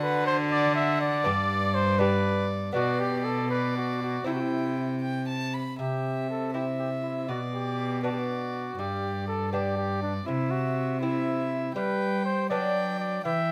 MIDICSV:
0, 0, Header, 1, 5, 480
1, 0, Start_track
1, 0, Tempo, 501672
1, 1207, Time_signature, 6, 3, 24, 8
1, 6499, Tempo, 497100
1, 12993, End_track
2, 0, Start_track
2, 0, Title_t, "Violin"
2, 0, Program_c, 0, 40
2, 0, Note_on_c, 0, 78, 78
2, 455, Note_off_c, 0, 78, 0
2, 490, Note_on_c, 0, 78, 79
2, 1201, Note_on_c, 0, 74, 82
2, 1215, Note_off_c, 0, 78, 0
2, 1910, Note_off_c, 0, 74, 0
2, 1916, Note_on_c, 0, 74, 75
2, 2621, Note_off_c, 0, 74, 0
2, 2627, Note_on_c, 0, 74, 77
2, 3338, Note_off_c, 0, 74, 0
2, 3358, Note_on_c, 0, 74, 76
2, 4079, Note_on_c, 0, 79, 65
2, 4093, Note_off_c, 0, 74, 0
2, 4761, Note_off_c, 0, 79, 0
2, 4808, Note_on_c, 0, 79, 67
2, 5035, Note_off_c, 0, 79, 0
2, 5052, Note_on_c, 0, 81, 73
2, 5298, Note_on_c, 0, 83, 71
2, 5312, Note_off_c, 0, 81, 0
2, 5539, Note_off_c, 0, 83, 0
2, 5544, Note_on_c, 0, 76, 62
2, 6222, Note_off_c, 0, 76, 0
2, 6255, Note_on_c, 0, 76, 63
2, 6978, Note_on_c, 0, 74, 61
2, 6992, Note_off_c, 0, 76, 0
2, 7694, Note_off_c, 0, 74, 0
2, 7699, Note_on_c, 0, 74, 60
2, 8408, Note_off_c, 0, 74, 0
2, 8413, Note_on_c, 0, 74, 61
2, 9123, Note_off_c, 0, 74, 0
2, 9140, Note_on_c, 0, 74, 62
2, 9847, Note_on_c, 0, 76, 69
2, 9861, Note_off_c, 0, 74, 0
2, 10567, Note_off_c, 0, 76, 0
2, 10572, Note_on_c, 0, 76, 69
2, 11281, Note_off_c, 0, 76, 0
2, 11294, Note_on_c, 0, 79, 68
2, 11976, Note_off_c, 0, 79, 0
2, 12014, Note_on_c, 0, 79, 71
2, 12721, Note_off_c, 0, 79, 0
2, 12731, Note_on_c, 0, 79, 68
2, 12993, Note_off_c, 0, 79, 0
2, 12993, End_track
3, 0, Start_track
3, 0, Title_t, "Cornet"
3, 0, Program_c, 1, 56
3, 25, Note_on_c, 1, 71, 110
3, 247, Note_off_c, 1, 71, 0
3, 253, Note_on_c, 1, 72, 118
3, 361, Note_off_c, 1, 72, 0
3, 490, Note_on_c, 1, 74, 121
3, 716, Note_off_c, 1, 74, 0
3, 722, Note_on_c, 1, 76, 115
3, 960, Note_off_c, 1, 76, 0
3, 964, Note_on_c, 1, 74, 116
3, 1668, Note_on_c, 1, 72, 117
3, 1682, Note_off_c, 1, 74, 0
3, 1906, Note_on_c, 1, 71, 110
3, 1920, Note_off_c, 1, 72, 0
3, 2379, Note_off_c, 1, 71, 0
3, 2632, Note_on_c, 1, 66, 109
3, 2868, Note_on_c, 1, 67, 95
3, 2883, Note_off_c, 1, 66, 0
3, 3104, Note_on_c, 1, 69, 107
3, 3119, Note_off_c, 1, 67, 0
3, 3346, Note_off_c, 1, 69, 0
3, 3352, Note_on_c, 1, 71, 98
3, 3590, Note_off_c, 1, 71, 0
3, 3603, Note_on_c, 1, 66, 86
3, 3837, Note_off_c, 1, 66, 0
3, 3850, Note_on_c, 1, 66, 92
3, 4073, Note_off_c, 1, 66, 0
3, 4078, Note_on_c, 1, 64, 87
3, 4147, Note_on_c, 1, 66, 71
3, 4161, Note_off_c, 1, 64, 0
3, 4214, Note_on_c, 1, 64, 90
3, 4228, Note_off_c, 1, 66, 0
3, 4809, Note_off_c, 1, 64, 0
3, 5540, Note_on_c, 1, 67, 89
3, 5985, Note_off_c, 1, 67, 0
3, 6028, Note_on_c, 1, 69, 85
3, 6246, Note_off_c, 1, 69, 0
3, 6252, Note_on_c, 1, 67, 78
3, 6361, Note_off_c, 1, 67, 0
3, 6492, Note_on_c, 1, 67, 75
3, 6602, Note_off_c, 1, 67, 0
3, 6727, Note_on_c, 1, 64, 76
3, 6968, Note_off_c, 1, 64, 0
3, 6981, Note_on_c, 1, 66, 83
3, 7089, Note_off_c, 1, 66, 0
3, 7223, Note_on_c, 1, 67, 89
3, 7694, Note_off_c, 1, 67, 0
3, 7699, Note_on_c, 1, 66, 82
3, 7776, Note_on_c, 1, 67, 76
3, 7791, Note_off_c, 1, 66, 0
3, 7842, Note_on_c, 1, 66, 89
3, 7856, Note_off_c, 1, 67, 0
3, 8432, Note_on_c, 1, 67, 95
3, 8446, Note_off_c, 1, 66, 0
3, 8892, Note_off_c, 1, 67, 0
3, 8898, Note_on_c, 1, 69, 96
3, 9135, Note_off_c, 1, 69, 0
3, 9140, Note_on_c, 1, 67, 87
3, 9369, Note_off_c, 1, 67, 0
3, 9374, Note_on_c, 1, 67, 89
3, 9613, Note_off_c, 1, 67, 0
3, 9619, Note_on_c, 1, 62, 76
3, 9727, Note_off_c, 1, 62, 0
3, 9848, Note_on_c, 1, 64, 92
3, 10083, Note_on_c, 1, 66, 91
3, 10098, Note_off_c, 1, 64, 0
3, 10557, Note_off_c, 1, 66, 0
3, 10563, Note_on_c, 1, 64, 94
3, 11276, Note_off_c, 1, 64, 0
3, 11291, Note_on_c, 1, 71, 100
3, 11764, Note_off_c, 1, 71, 0
3, 11771, Note_on_c, 1, 72, 104
3, 12002, Note_off_c, 1, 72, 0
3, 12008, Note_on_c, 1, 74, 106
3, 12483, Note_off_c, 1, 74, 0
3, 12489, Note_on_c, 1, 74, 90
3, 12722, Note_off_c, 1, 74, 0
3, 12727, Note_on_c, 1, 76, 110
3, 12993, Note_off_c, 1, 76, 0
3, 12993, End_track
4, 0, Start_track
4, 0, Title_t, "Lute"
4, 0, Program_c, 2, 24
4, 0, Note_on_c, 2, 50, 71
4, 0, Note_on_c, 2, 62, 68
4, 0, Note_on_c, 2, 66, 72
4, 1158, Note_off_c, 2, 62, 0
4, 1164, Note_off_c, 2, 66, 0
4, 1169, Note_off_c, 2, 50, 0
4, 1183, Note_on_c, 2, 59, 67
4, 1193, Note_on_c, 2, 62, 66
4, 1204, Note_on_c, 2, 67, 65
4, 1217, Note_on_c, 2, 43, 75
4, 1883, Note_off_c, 2, 59, 0
4, 1891, Note_off_c, 2, 62, 0
4, 1894, Note_on_c, 2, 59, 60
4, 1896, Note_off_c, 2, 67, 0
4, 1904, Note_on_c, 2, 62, 62
4, 1919, Note_on_c, 2, 67, 61
4, 2596, Note_off_c, 2, 59, 0
4, 2604, Note_off_c, 2, 43, 0
4, 2607, Note_on_c, 2, 59, 62
4, 2608, Note_off_c, 2, 62, 0
4, 2615, Note_off_c, 2, 67, 0
4, 2621, Note_on_c, 2, 62, 63
4, 2643, Note_on_c, 2, 47, 70
4, 4029, Note_off_c, 2, 59, 0
4, 4036, Note_off_c, 2, 62, 0
4, 4047, Note_off_c, 2, 47, 0
4, 4059, Note_on_c, 2, 60, 57
4, 4071, Note_on_c, 2, 64, 53
4, 4082, Note_on_c, 2, 48, 59
4, 5307, Note_off_c, 2, 48, 0
4, 5489, Note_off_c, 2, 60, 0
4, 5495, Note_off_c, 2, 64, 0
4, 5539, Note_on_c, 2, 48, 53
4, 6256, Note_on_c, 2, 60, 45
4, 6261, Note_on_c, 2, 64, 50
4, 6939, Note_off_c, 2, 48, 0
4, 6939, Note_off_c, 2, 60, 0
4, 6940, Note_off_c, 2, 64, 0
4, 6976, Note_on_c, 2, 47, 56
4, 7696, Note_on_c, 2, 59, 47
4, 7706, Note_on_c, 2, 62, 54
4, 8382, Note_off_c, 2, 59, 0
4, 8384, Note_off_c, 2, 47, 0
4, 8387, Note_off_c, 2, 62, 0
4, 8425, Note_on_c, 2, 43, 59
4, 9139, Note_on_c, 2, 59, 50
4, 9148, Note_on_c, 2, 62, 53
4, 9821, Note_off_c, 2, 59, 0
4, 9823, Note_off_c, 2, 43, 0
4, 9823, Note_off_c, 2, 62, 0
4, 9865, Note_on_c, 2, 48, 60
4, 10585, Note_on_c, 2, 60, 53
4, 10589, Note_on_c, 2, 64, 55
4, 11262, Note_off_c, 2, 48, 0
4, 11263, Note_off_c, 2, 60, 0
4, 11265, Note_off_c, 2, 64, 0
4, 11293, Note_on_c, 2, 55, 65
4, 11976, Note_off_c, 2, 55, 0
4, 12014, Note_on_c, 2, 54, 58
4, 12021, Note_on_c, 2, 59, 57
4, 12025, Note_on_c, 2, 62, 58
4, 12698, Note_off_c, 2, 54, 0
4, 12700, Note_off_c, 2, 59, 0
4, 12703, Note_off_c, 2, 62, 0
4, 12735, Note_on_c, 2, 52, 60
4, 12993, Note_off_c, 2, 52, 0
4, 12993, End_track
5, 0, Start_track
5, 0, Title_t, "Cello"
5, 0, Program_c, 3, 42
5, 0, Note_on_c, 3, 50, 94
5, 1212, Note_on_c, 3, 43, 91
5, 1226, Note_off_c, 3, 50, 0
5, 2636, Note_off_c, 3, 43, 0
5, 2642, Note_on_c, 3, 47, 88
5, 4055, Note_off_c, 3, 47, 0
5, 4081, Note_on_c, 3, 48, 75
5, 5320, Note_off_c, 3, 48, 0
5, 5546, Note_on_c, 3, 48, 65
5, 6978, Note_on_c, 3, 47, 71
5, 6992, Note_off_c, 3, 48, 0
5, 8417, Note_off_c, 3, 47, 0
5, 8423, Note_on_c, 3, 43, 72
5, 9832, Note_off_c, 3, 43, 0
5, 9860, Note_on_c, 3, 48, 78
5, 11270, Note_off_c, 3, 48, 0
5, 11300, Note_on_c, 3, 55, 72
5, 12016, Note_on_c, 3, 54, 64
5, 12031, Note_off_c, 3, 55, 0
5, 12732, Note_off_c, 3, 54, 0
5, 12737, Note_on_c, 3, 52, 74
5, 12993, Note_off_c, 3, 52, 0
5, 12993, End_track
0, 0, End_of_file